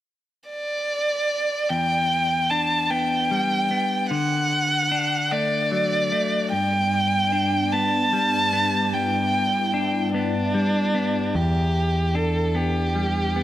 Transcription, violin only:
0, 0, Header, 1, 2, 480
1, 0, Start_track
1, 0, Tempo, 804290
1, 1016, Time_signature, 6, 3, 24, 8
1, 8017, End_track
2, 0, Start_track
2, 0, Title_t, "Violin"
2, 0, Program_c, 0, 40
2, 297, Note_on_c, 0, 74, 55
2, 1012, Note_on_c, 0, 79, 64
2, 1021, Note_off_c, 0, 74, 0
2, 1492, Note_on_c, 0, 81, 59
2, 1501, Note_off_c, 0, 79, 0
2, 1732, Note_on_c, 0, 79, 61
2, 1741, Note_off_c, 0, 81, 0
2, 2445, Note_off_c, 0, 79, 0
2, 2449, Note_on_c, 0, 78, 64
2, 3172, Note_on_c, 0, 74, 60
2, 3181, Note_off_c, 0, 78, 0
2, 3889, Note_off_c, 0, 74, 0
2, 3893, Note_on_c, 0, 79, 68
2, 4610, Note_on_c, 0, 81, 72
2, 4619, Note_off_c, 0, 79, 0
2, 5332, Note_on_c, 0, 79, 60
2, 5341, Note_off_c, 0, 81, 0
2, 6053, Note_off_c, 0, 79, 0
2, 6060, Note_on_c, 0, 62, 57
2, 6777, Note_on_c, 0, 67, 53
2, 6786, Note_off_c, 0, 62, 0
2, 7253, Note_on_c, 0, 69, 52
2, 7262, Note_off_c, 0, 67, 0
2, 7496, Note_on_c, 0, 67, 53
2, 7505, Note_off_c, 0, 69, 0
2, 8017, Note_off_c, 0, 67, 0
2, 8017, End_track
0, 0, End_of_file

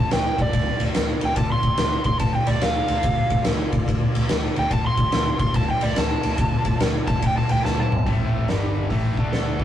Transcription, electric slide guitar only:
0, 0, Header, 1, 2, 480
1, 0, Start_track
1, 0, Tempo, 418410
1, 1577, Time_signature, 4, 2, 24, 8
1, 11061, End_track
2, 0, Start_track
2, 0, Title_t, "Electric slide guitar"
2, 0, Program_c, 0, 29
2, 0, Note_on_c, 0, 81, 88
2, 138, Note_off_c, 0, 81, 0
2, 150, Note_on_c, 0, 79, 99
2, 455, Note_off_c, 0, 79, 0
2, 478, Note_on_c, 0, 74, 103
2, 934, Note_off_c, 0, 74, 0
2, 1438, Note_on_c, 0, 79, 93
2, 1577, Note_off_c, 0, 79, 0
2, 1582, Note_on_c, 0, 81, 88
2, 1734, Note_off_c, 0, 81, 0
2, 1746, Note_on_c, 0, 84, 107
2, 2351, Note_off_c, 0, 84, 0
2, 2365, Note_on_c, 0, 84, 89
2, 2520, Note_off_c, 0, 84, 0
2, 2525, Note_on_c, 0, 81, 96
2, 2685, Note_off_c, 0, 81, 0
2, 2699, Note_on_c, 0, 79, 94
2, 2837, Note_on_c, 0, 74, 90
2, 2852, Note_off_c, 0, 79, 0
2, 3001, Note_off_c, 0, 74, 0
2, 3012, Note_on_c, 0, 77, 95
2, 3943, Note_off_c, 0, 77, 0
2, 5266, Note_on_c, 0, 79, 90
2, 5414, Note_off_c, 0, 79, 0
2, 5431, Note_on_c, 0, 81, 91
2, 5576, Note_off_c, 0, 81, 0
2, 5584, Note_on_c, 0, 84, 111
2, 6186, Note_off_c, 0, 84, 0
2, 6199, Note_on_c, 0, 84, 88
2, 6360, Note_off_c, 0, 84, 0
2, 6382, Note_on_c, 0, 81, 97
2, 6531, Note_off_c, 0, 81, 0
2, 6545, Note_on_c, 0, 79, 92
2, 6686, Note_on_c, 0, 74, 82
2, 6693, Note_off_c, 0, 79, 0
2, 6843, Note_off_c, 0, 74, 0
2, 6862, Note_on_c, 0, 81, 106
2, 7788, Note_off_c, 0, 81, 0
2, 8121, Note_on_c, 0, 81, 96
2, 8281, Note_off_c, 0, 81, 0
2, 8339, Note_on_c, 0, 79, 92
2, 8460, Note_off_c, 0, 79, 0
2, 8464, Note_on_c, 0, 81, 93
2, 8614, Note_off_c, 0, 81, 0
2, 8623, Note_on_c, 0, 79, 93
2, 8773, Note_off_c, 0, 79, 0
2, 8780, Note_on_c, 0, 81, 89
2, 8932, Note_off_c, 0, 81, 0
2, 8968, Note_on_c, 0, 81, 98
2, 9262, Note_off_c, 0, 81, 0
2, 10696, Note_on_c, 0, 69, 76
2, 11061, Note_off_c, 0, 69, 0
2, 11061, End_track
0, 0, End_of_file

